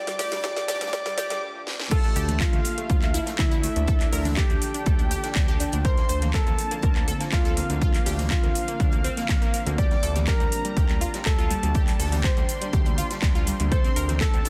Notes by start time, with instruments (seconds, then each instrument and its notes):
Already playing: ambient pad D2 D3 A3 G4, grand piano D5, supersaw synth D6
0.07 synth arpeggio sound G3, snare, open hi-hat, shaker
0.19 synth arpeggio sound G4, grand piano D5, supersaw synth D6, snare, open hi-hat, shaker
0.32 synth arpeggio sound G3, snare, closed hi-hat, shaker
0.44 synth arpeggio sound G4, grand piano D5, supersaw synth D6, kick, snare, closed hi-hat, shaker
0.56 synth arpeggio sound G3, snare, closed hi-hat, shaker
0.68 synth arpeggio sound G4, grand piano D5, supersaw synth D6, snare, closed hi-hat, open hi-hat, shaker
0.75 snare, closed hi-hat
0.81 synth arpeggio sound G3, snare, closed hi-hat, shaker
0.87 snare, closed hi-hat
0.93 synth arpeggio sound G4, grand piano D5, supersaw synth D6, kick, snare, closed hi-hat, shaker
1.06 synth arpeggio sound G3, snare, closed hi-hat, shaker
1.17 synth arpeggio sound G4, grand piano D5, supersaw synth D6, snare, closed hi-hat, open hi-hat, shaker
1.30 synth arpeggio sound G3, snare, closed hi-hat, shaker
1.67 snare
1.80 snare
1.91 ambient pad D3 F3 D4 A4, synth arpeggio sound F4, grand piano A4, supersaw synth A5, kick, closed hi-hat, crash, shaker
2.04 synth arpeggio sound A3, snare, closed hi-hat, high bongo, shaker
2.16 analog synth bass D2, synth arpeggio sound G4, closed hi-hat, open hi-hat, shaker
2.28 synth arpeggio sound A3, snare, closed hi-hat, high conga, low conga, shaker
2.40 grand piano F4, synth arpeggio sound F4, supersaw synth F5, kick, snare, clap, closed hi-hat, high bongo, shaker
2.53 analog synth bass D2, synth arpeggio sound A3, closed hi-hat, shaker
2.65 closed hi-hat, open hi-hat, high bongo, high conga, shaker
2.78 synth arpeggio sound A3, closed hi-hat, shaker
2.90 analog synth bass D2, synth arpeggio sound F4, kick, closed hi-hat, shaker
3.02 synth arpeggio sound A3, clap, closed hi-hat, high conga, shaker
3.14 synth arpeggio sound E4, closed hi-hat, open hi-hat, shaker
3.26 synth arpeggio sound A3, snare, closed hi-hat, high bongo, shaker
3.38 analog synth bass D2, synth arpeggio sound A3, grand piano E4, supersaw synth E5, kick, snare, clap, closed hi-hat, high conga, shaker
3.51 synth arpeggio sound E4, closed hi-hat, high bongo, shaker
3.63 synth arpeggio sound A3, closed hi-hat, open hi-hat, shaker
3.76 analog synth bass D2, synth arpeggio sound A3, closed hi-hat, high bongo, high conga, shaker
3.88 synth arpeggio sound A4, kick, closed hi-hat, shaker
4.00 synth arpeggio sound D4, clap, open hi-hat, shaker
4.12 analog synth bass D2, synth arpeggio sound A#4, open hi-hat, high bongo, shaker
4.25 synth arpeggio sound D4, snare, closed hi-hat, high conga, low conga, shaker
4.36 grand piano G4, synth arpeggio sound A4, supersaw synth G5, kick, snare, clap, closed hi-hat, shaker
4.50 analog synth bass D2, synth arpeggio sound D4, closed hi-hat, shaker
4.62 closed hi-hat, open hi-hat, high bongo, shaker
4.74 synth arpeggio sound D4, closed hi-hat, shaker
4.86 analog synth bass D2, synth arpeggio sound A4, kick, closed hi-hat, shaker
4.99 synth arpeggio sound D4, closed hi-hat, high bongo, high conga, shaker
5.11 synth arpeggio sound G4, closed hi-hat, open hi-hat, shaker
5.23 synth arpeggio sound D4, snare, closed hi-hat, high bongo, shaker
5.35 analog synth bass D2, synth arpeggio sound D4, kick, snare, clap, closed hi-hat, high conga, shaker
5.48 synth arpeggio sound G4, closed hi-hat, high bongo, shaker
5.60 synth arpeggio sound D4, closed hi-hat, open hi-hat, shaker
5.72 analog synth bass D2, synth arpeggio sound D4, closed hi-hat, high conga, shaker
5.84 ambient pad A#3 C4, synth arpeggio sound A#4, grand piano C5, supersaw synth C6, kick, closed hi-hat, high bongo, shaker
5.97 synth arpeggio sound A#3, snare, closed hi-hat, shaker
6.09 analog synth bass D2, synth arpeggio sound C5, closed hi-hat, open hi-hat, high bongo, shaker
6.22 synth arpeggio sound A#3, snare, closed hi-hat, high conga, low conga, shaker
6.34 grand piano A4, synth arpeggio sound A#4, supersaw synth A5, kick, snare, clap, closed hi-hat, shaker
6.47 analog synth bass D2, synth arpeggio sound A#3, closed hi-hat, shaker
6.58 closed hi-hat, open hi-hat, high conga, shaker
6.71 synth arpeggio sound A#3, closed hi-hat, high bongo, shaker
6.82 analog synth bass D2, synth arpeggio sound A#4, kick, closed hi-hat, shaker
6.95 synth arpeggio sound A#3, clap, closed hi-hat, high bongo, high conga, shaker
7.08 synth arpeggio sound A4, closed hi-hat, open hi-hat, shaker
7.20 synth arpeggio sound A#3, snare, closed hi-hat, high bongo, shaker
7.32 analog synth bass D2, grand piano F4, supersaw synth F5, kick, snare, clap, closed hi-hat, high conga, shaker
7.45 synth arpeggio sound A4, closed hi-hat, shaker
7.57 synth arpeggio sound A#3, closed hi-hat, open hi-hat, high bongo, shaker
7.70 analog synth bass D2, synth arpeggio sound A#3, closed hi-hat, high conga, shaker
7.81 synth arpeggio sound F4, kick, closed hi-hat, high bongo, shaker
7.94 synth arpeggio sound A#3, clap, open hi-hat, shaker
8.06 analog synth bass D2, synth arpeggio sound G4, open hi-hat, shaker
8.19 synth arpeggio sound A#3, snare, closed hi-hat, high conga, low conga, shaker
8.30 grand piano F4, synth arpeggio sound F4, supersaw synth F5, kick, snare, clap, closed hi-hat, shaker
8.43 analog synth bass D2, synth arpeggio sound A#3, closed hi-hat, high bongo, shaker
8.55 closed hi-hat, open hi-hat, shaker
8.68 synth arpeggio sound A#3, closed hi-hat, high bongo, shaker
8.80 analog synth bass D2, synth arpeggio sound D4, kick, closed hi-hat, shaker
8.92 synth arpeggio sound A#3, closed hi-hat, high bongo, high conga, shaker
9.04 synth arpeggio sound C4, closed hi-hat, open hi-hat, shaker
9.17 synth arpeggio sound A#3, snare, closed hi-hat, shaker
9.29 analog synth bass D2, synth arpeggio sound A#3, kick, snare, clap, closed hi-hat, high bongo, high conga, shaker
9.42 synth arpeggio sound A#3, closed hi-hat, shaker
9.54 synth arpeggio sound A#3, closed hi-hat, open hi-hat, high bongo, shaker
9.66 analog synth bass D2, synth arpeggio sound A#3, closed hi-hat, high conga, shaker
9.78 ambient pad A#3 D4 G4, synth arpeggio sound G4, grand piano D5, supersaw synth D6, kick, closed hi-hat, shaker
9.91 synth arpeggio sound G3, snare, closed hi-hat, high bongo, shaker
10.03 analog synth bass D2, synth arpeggio sound A4, closed hi-hat, open hi-hat, shaker
10.15 synth arpeggio sound G3, snare, closed hi-hat, high conga, low conga, shaker
10.27 synth arpeggio sound G4, grand piano A#4, supersaw synth A#5, kick, snare, clap, closed hi-hat, high bongo, shaker
10.40 analog synth bass D2, synth arpeggio sound G3, closed hi-hat, shaker
10.52 closed hi-hat, open hi-hat, high bongo, high conga, shaker
10.65 synth arpeggio sound G3, closed hi-hat, shaker
10.77 analog synth bass D2, synth arpeggio sound G4, kick, closed hi-hat, shaker
10.89 synth arpeggio sound G3, clap, closed hi-hat, high conga, shaker
11.01 synth arpeggio sound F4, closed hi-hat, open hi-hat, shaker
11.14 synth arpeggio sound G3, snare, closed hi-hat, high bongo, shaker
11.26 analog synth bass D2, synth arpeggio sound G3, grand piano A4, supersaw synth A5, kick, snare, clap, closed hi-hat, high conga, shaker
11.38 synth arpeggio sound F4, closed hi-hat, high bongo, shaker
11.50 synth arpeggio sound G3, closed hi-hat, open hi-hat, shaker
11.63 analog synth bass D2, synth arpeggio sound G3, closed hi-hat, high bongo, high conga, shaker
11.75 synth arpeggio sound G4, kick, closed hi-hat, shaker
11.87 synth arpeggio sound G3, clap, open hi-hat, shaker
12.00 analog synth bass D2, synth arpeggio sound A4, open hi-hat, high bongo, shaker
12.12 synth arpeggio sound G3, snare, closed hi-hat, high conga, low conga, shaker
12.24 synth arpeggio sound G4, grand piano C5, supersaw synth C6, kick, snare, clap, closed hi-hat, shaker
12.37 analog synth bass D2, synth arpeggio sound G3, closed hi-hat, shaker
12.49 closed hi-hat, open hi-hat, high bongo, shaker
12.61 synth arpeggio sound G3, closed hi-hat, shaker
12.73 analog synth bass D2, synth arpeggio sound G4, kick, closed hi-hat, shaker
12.85 synth arpeggio sound G3, closed hi-hat, high bongo, high conga, shaker
12.98 synth arpeggio sound F4, closed hi-hat, open hi-hat, shaker
13.10 synth arpeggio sound G3, snare, closed hi-hat, high bongo, shaker
13.22 analog synth bass D2, synth arpeggio sound G3, kick, snare, clap, closed hi-hat, high conga, shaker
13.35 synth arpeggio sound F4, closed hi-hat, high bongo, shaker
13.47 synth arpeggio sound G3, closed hi-hat, open hi-hat, shaker
13.60 analog synth bass D2, synth arpeggio sound G3, closed hi-hat, high conga, shaker
13.72 ambient pad D3 F4 A4, synth arpeggio sound A4, grand piano C5, supersaw synth C6, kick, closed hi-hat, high bongo, shaker
13.84 synth arpeggio sound C4, snare, closed hi-hat, shaker
13.96 analog synth bass D2, synth arpeggio sound A#4, closed hi-hat, open hi-hat, high bongo, shaker
14.09 synth arpeggio sound C4, snare, closed hi-hat, high conga, low conga, shaker
14.21 grand piano A4, synth arpeggio sound A4, supersaw synth A5, kick, snare, clap, closed hi-hat, high bongo, shaker
14.34 analog synth bass D2, synth arpeggio sound C4, closed hi-hat, shaker
14.45 snare, closed hi-hat, open hi-hat